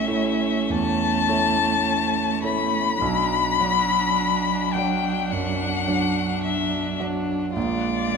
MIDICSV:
0, 0, Header, 1, 5, 480
1, 0, Start_track
1, 0, Tempo, 1244813
1, 270, Tempo, 1158301
1, 1230, Time_signature, 4, 2, 24, 8
1, 1230, Tempo, 1138520
1, 3403, End_track
2, 0, Start_track
2, 0, Title_t, "Violin"
2, 0, Program_c, 0, 40
2, 0, Note_on_c, 0, 76, 69
2, 271, Note_on_c, 0, 81, 87
2, 277, Note_off_c, 0, 76, 0
2, 987, Note_off_c, 0, 81, 0
2, 989, Note_on_c, 0, 83, 91
2, 1951, Note_on_c, 0, 79, 70
2, 1957, Note_off_c, 0, 83, 0
2, 2199, Note_on_c, 0, 78, 66
2, 2206, Note_off_c, 0, 79, 0
2, 2669, Note_off_c, 0, 78, 0
2, 2671, Note_on_c, 0, 76, 62
2, 2904, Note_off_c, 0, 76, 0
2, 3148, Note_on_c, 0, 74, 70
2, 3403, Note_off_c, 0, 74, 0
2, 3403, End_track
3, 0, Start_track
3, 0, Title_t, "Grand piano"
3, 0, Program_c, 1, 0
3, 0, Control_c, 1, 64, 127
3, 0, Note_on_c, 1, 33, 59
3, 0, Note_on_c, 1, 57, 38
3, 0, Note_on_c, 1, 64, 34
3, 0, Note_on_c, 1, 73, 42
3, 29, Note_off_c, 1, 57, 0
3, 29, Note_on_c, 1, 57, 40
3, 31, Note_off_c, 1, 64, 0
3, 31, Note_on_c, 1, 64, 41
3, 32, Note_off_c, 1, 73, 0
3, 32, Note_on_c, 1, 73, 41
3, 253, Note_off_c, 1, 57, 0
3, 254, Note_off_c, 1, 64, 0
3, 255, Note_off_c, 1, 73, 0
3, 269, Note_on_c, 1, 40, 44
3, 505, Note_off_c, 1, 40, 0
3, 512, Note_on_c, 1, 57, 41
3, 512, Note_on_c, 1, 64, 45
3, 514, Note_on_c, 1, 73, 47
3, 974, Note_off_c, 1, 57, 0
3, 974, Note_off_c, 1, 64, 0
3, 975, Note_off_c, 1, 73, 0
3, 989, Note_on_c, 1, 57, 42
3, 990, Note_on_c, 1, 64, 43
3, 993, Note_on_c, 1, 73, 46
3, 1212, Note_off_c, 1, 57, 0
3, 1213, Note_off_c, 1, 64, 0
3, 1214, Note_off_c, 1, 73, 0
3, 1229, Note_on_c, 1, 35, 58
3, 1237, Control_c, 1, 64, 0
3, 1240, Note_off_c, 1, 33, 0
3, 1304, Control_c, 1, 64, 127
3, 1463, Note_off_c, 1, 35, 0
3, 1475, Note_on_c, 1, 54, 40
3, 1477, Note_on_c, 1, 62, 35
3, 1478, Note_on_c, 1, 74, 40
3, 1939, Note_off_c, 1, 54, 0
3, 1940, Note_off_c, 1, 62, 0
3, 1940, Note_off_c, 1, 74, 0
3, 1960, Note_on_c, 1, 54, 40
3, 1961, Note_on_c, 1, 62, 41
3, 1963, Note_on_c, 1, 74, 45
3, 2183, Note_off_c, 1, 54, 0
3, 2183, Note_off_c, 1, 62, 0
3, 2184, Note_off_c, 1, 74, 0
3, 2198, Note_on_c, 1, 42, 45
3, 2428, Note_off_c, 1, 42, 0
3, 2435, Note_on_c, 1, 54, 41
3, 2436, Note_on_c, 1, 62, 42
3, 2439, Note_on_c, 1, 74, 42
3, 2891, Note_off_c, 1, 54, 0
3, 2892, Note_off_c, 1, 62, 0
3, 2893, Note_off_c, 1, 74, 0
3, 2907, Note_on_c, 1, 54, 42
3, 2909, Note_on_c, 1, 62, 39
3, 2912, Note_on_c, 1, 74, 46
3, 3131, Note_off_c, 1, 54, 0
3, 3132, Note_off_c, 1, 62, 0
3, 3133, Note_off_c, 1, 74, 0
3, 3146, Note_on_c, 1, 34, 53
3, 3154, Control_c, 1, 64, 0
3, 3226, Control_c, 1, 64, 127
3, 3382, Note_off_c, 1, 34, 0
3, 3387, Note_on_c, 1, 56, 28
3, 3389, Note_on_c, 1, 65, 30
3, 3403, Note_off_c, 1, 56, 0
3, 3403, Note_off_c, 1, 65, 0
3, 3403, End_track
4, 0, Start_track
4, 0, Title_t, "Violin"
4, 0, Program_c, 2, 40
4, 0, Note_on_c, 2, 61, 59
4, 1213, Note_off_c, 2, 61, 0
4, 1231, Note_on_c, 2, 62, 60
4, 3131, Note_off_c, 2, 62, 0
4, 3147, Note_on_c, 2, 65, 53
4, 3403, Note_off_c, 2, 65, 0
4, 3403, End_track
5, 0, Start_track
5, 0, Title_t, "Cello"
5, 0, Program_c, 3, 42
5, 0, Note_on_c, 3, 57, 56
5, 1213, Note_off_c, 3, 57, 0
5, 1234, Note_on_c, 3, 54, 57
5, 3147, Note_on_c, 3, 56, 52
5, 3154, Note_off_c, 3, 54, 0
5, 3403, Note_off_c, 3, 56, 0
5, 3403, End_track
0, 0, End_of_file